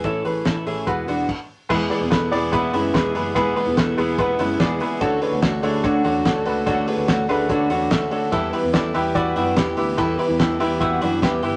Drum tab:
CC |------x-|x-------|--------|--------|
RD |--------|--x-x-x-|x-x-x-x-|x-x-x-x-|
HH |xoxoxo--|-opopopo|popopopo|popopopo|
SD |--o-----|--o---o-|--o---o-|--o---o-|
BD |o-o-o-o-|o-o-o-o-|o-o-o-o-|o-o-o-o-|

CC |--------|--------|--------|
RD |x-x-x-x-|x-x-x-x-|x-x-x-x-|
HH |popopopo|popopopo|popopopo|
SD |--o---o-|--o---o-|--o---o-|
BD |o-o-o-o-|o-o-o-o-|o-o-o-o-|